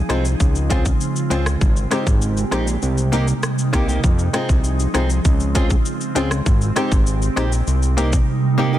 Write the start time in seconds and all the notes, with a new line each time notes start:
Already playing: F3 C4 D#4 G#4
0.09 C2 G#3 C4 D#4 F4 G#4, cross-stick, closed hi-hat, shaker
0.25 shaker
0.40 C#2 C#3 G#3 F4, kick, shaker
0.55 shaker
0.70 G#3 C4 C#4 F4 G#4, kick, closed hi-hat, shaker
0.85 muted nylon-string guitar stroke, kick, shaker
1.01 shaker
1.16 shaker
1.30 C#2 G#3 C4 C#4 F4 G#4, closed hi-hat, shaker
1.46 cross-stick, shaker
1.61 G#1 G#3 G4, kick, shaker
1.76 shaker
1.91 G#3 C4 D#4 G4, cross-stick, closed hi-hat, shaker
2.07 G#1, kick, shaker
2.22 shaker
2.37 shaker
2.51 A#1 G#3 C4 D#4 G4, cross-stick, closed hi-hat, shaker
2.67 shaker
2.82 C2 C3 G3 A#3 D#4, shaker
2.98 shaker
3.12 A#3 C4 D#4 G4, closed hi-hat, shaker
3.28 muted nylon-string guitar stroke, shaker
3.43 cross-stick, shaker
3.58 shaker
3.73 C2 A#3 C4 D#4 G4, kick, cross-stick, closed hi-hat, shaker
3.88 A#3 D#4 G4, shaker
4.04 F2 F3 C4 G#4, kick, shaker
4.19 shaker
4.33 G#3 C4 D#4 F4 G#4, cross-stick, closed hi-hat, shaker
4.49 C2, kick, shaker
4.64 shaker
4.80 shaker
4.94 C2 G#3 C4 D#4 F4 G#4, cross-stick, closed hi-hat, shaker
5.10 shaker
5.25 C#2 C#3 G#3 C4 F4, kick, shaker
5.40 shaker
5.55 G#3 C4 C#4 F4 G#4, kick, closed hi-hat, shaker
5.70 muted nylon-string guitar stroke, kick, shaker
5.85 shaker
6.01 shaker
6.15 C#2 G#3 C4 C#4 F4 G#4, closed hi-hat, shaker
6.31 cross-stick, shaker
6.46 G#1 G4, kick, shaker
6.61 shaker
6.76 G#3 C4 D#4 G4, cross-stick, closed hi-hat, shaker
6.92 G#1, kick, shaker
7.07 shaker
7.22 shaker
7.36 A#1 G#3 C4 D#4 G4, cross-stick, closed hi-hat, shaker
7.52 shaker
7.67 C2 C3 G3 A#3 D#4, shaker
7.83 shaker
7.97 A#3 C4 D#4 G4, closed hi-hat, shaker
8.12 muted nylon-string guitar stroke, kick, shaker
8.58 A#3 C4 D#4 G4
8.73 A#3 D#4 G4